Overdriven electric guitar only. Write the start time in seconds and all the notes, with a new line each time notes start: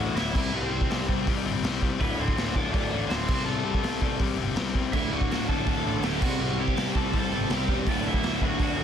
Already playing: F#4 F#5
0.16 E4 E5
0.55 C4 C5
2.01 B3 B4
2.19 C4 C5
2.57 D4 D5
2.73 D4 D5
3.09 C4 C5
3.45 A3 A4
4.93 E4 E5
5.12 F#4 F#5
5.48 A4 A5
5.67 A4 A5
6.04 G4 G5
6.23 F#4 F#5
6.61 G4 G5
6.96 A4 A5
7.17 A4 A5
7.53 G4 G5
7.89 D4 D5
8.07 E4 E5
8.44 F#4 F#5
8.62 F#4 F#5